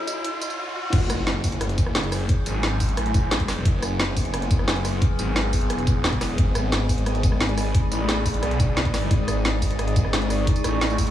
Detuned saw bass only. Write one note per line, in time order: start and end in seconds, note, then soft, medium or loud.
0.93 1.77 F#1 loud
1.78 2.28 F#1 loud
2.46 2.96 G#1 loud
2.97 3.64 A1 medium
3.65 4.49 F#1 loud
4.51 5.00 F#1 loud
5.19 5.69 G#1 loud
5.70 6.37 E1 loud
6.38 7.22 G#1 loud
7.23 7.73 G#1 loud
7.92 8.41 A1 loud
8.43 9.10 B1 loud
9.11 9.95 G#1 loud
9.96 10.46 G#1 loud
10.64 11.11 A1 loud